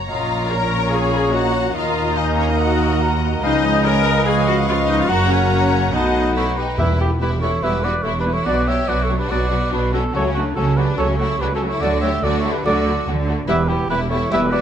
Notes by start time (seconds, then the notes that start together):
Already playing: C#5 A#5
0.08 A#1 A#2 A#3 C#4 F4 C#5 D#5 F5 A#5
0.49 A#4 C#5 A#5
0.71 C#6
0.91 G#4 C#5 F5 G#5 C#6
1.12 B5
1.32 F#4 C#5 D#5 F#5 A#5
1.54 C#5
1.74 D#2 D#4 F4 A#4 D#5 F5 A#5
2.17 D#4 D#5 F5 G#5
2.38 C#4 C#5
2.49 D#4 D#5
2.58 F#4 D#5 F#5
2.80 A#5
3.01 A#4 F#5 A#5
3.42 C#2 C#3 F3 G#3 C#4 D#4 B4 D#5 F5 G#5
3.65 D#5
3.84 A#4 C#5 G#5 A#5
4.05 D#5
4.26 C#3 F3 G#3 C#4 G#4 D#5 F5 G#5 C#6
4.47 F#4 F#5
4.68 C#3 F3 G#3 C#4 F4 D#5 F5
4.89 D#4 D#5
5.00 F4 F5
5.09 F#1 F#2 C#3 F#3 A#3 F#4 A#4 F#5 A#5
5.30 C#4 C#5
5.92 B1 B2 F#3 A3 D#4 F#4 D#5 F#5 A5 B5
6.34 E4 A4 C#5 B5
6.56 D#4 G4 B4 G5
6.77 E1 E2 B2 G3 B3 E4 G4 B4 E5
7.00 G3 B3 E4 G4
7.21 E1 E2 G3 B3 E4 G4 B4
7.41 G3 B3 E4 A4 C#5
7.63 E1 E2 B2 G3 B3 E4 G4 B4 E5
7.83 G3 B3 E4 F#4 B4 D5
8.03 E1 E2 G3 B3 E4 A4 C#5
8.18 D4 G4 B4
8.26 G3 B3 E4
8.32 E4 A4 C#5
8.45 B1 B2 F#3 B3 D4 F#4 B4 D5
8.66 F#3 B3 D4 F#4 G4 C#5 E5
8.88 B1 B2 F#3 B3 D4 F#4 B4 D5
9.04 E4 A4 C#5
9.09 F#3 B3 D4 F#4
9.18 D4 G4 B4
9.31 B1 B2 F#3 B3 D4 F#4 B4 D5
9.50 F#3 B3 D4 F#4
9.71 B1 B2 F#3 B3 D4 F#4 B4
9.92 F#3 B3 C#4 D4 F#4 A4
10.13 C#2 C#3 F#3 A3 C#4 F#4 A4 C#5
10.34 F#3 A3 C#4 D4 F#4
10.55 C#2 C#3 F#3 A3 C#4 F#4 A4
10.77 F#3 A3 C#4 D4 F#4 G4 B4
10.96 C#2 C#3 F#3 A3 C#4 F#4 A4 C#5
11.17 F#3 A3 C#4 E4 F#4 A4 C#5
11.38 C#2 C#3 F#3 A3 C#4 D4 F#4 G4 B4
11.53 C#4 F#4 A4
11.62 F#3 A3 C#4 F#4
11.66 E4 A4 C#5
11.80 D2 A2 D3 F#3 A3 F#4 A4 D5
12.01 F#3 A3 F#4 G4 C#5 E5
12.22 D2 D3 F#3 A3 F#4 A4 D5
12.37 E4 A4 C#5
12.45 F#3 A3 F#4
12.52 D4 G4 B4
12.65 D2 A2 D3 F#3 A3 F#4 A4 D5
12.86 F#3 A3 F#4
13.06 D2 D3 F#3 A3 F#4
13.27 F#3 A3 F#4
13.47 E1 E2 E3 G3 B3 E4 G4 B4 E5
13.68 G3 B3 E4 G4
13.89 E1 E2 G3 B3 E4 G4 B4
14.09 G3 B3 E4 A4 C#5
14.30 E1 E2 E3 G3 B3 E4 G4 B4 E5
14.50 G3 B3 E4 F#4 B4 D5